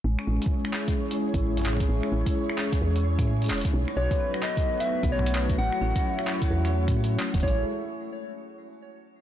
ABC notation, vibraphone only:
X:1
M:4/4
L:1/16
Q:"Swing 16ths" 1/4=130
K:A
V:1 name="Vibraphone"
G, C G, z E G, G G, C G, z E G, G G, C | G, z E G, G G, C G, z E G, G G, C G, z | ^D F, F F, B, F, z D F, F F, B, F, z D F, | F F, C F, z E F, F F, C F z c C A, C |
G,2 z12 z2 |]